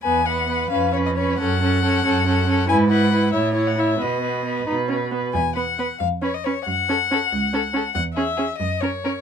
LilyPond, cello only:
\new Staff \with { instrumentName = "Cello" } { \clef bass \time 6/8 \key e \major \tempo 4. = 91 e,4. eis,4. | fis,4. fis,4. | gis,4. a,4. | b,4. b,4. |
e,4. eis,4. | fis,4. cis,4. | \key cis \dorian e,4. fis,4. | }